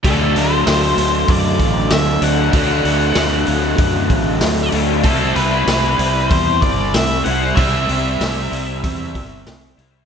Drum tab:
HH |oooooooo|oooooooo|oooooooo|oooooooo|
SD |--o---o-|--o---o-|--o---o-|--o---o-|
BD |o---oo--|o---oo--|o---oo--|o---oo--|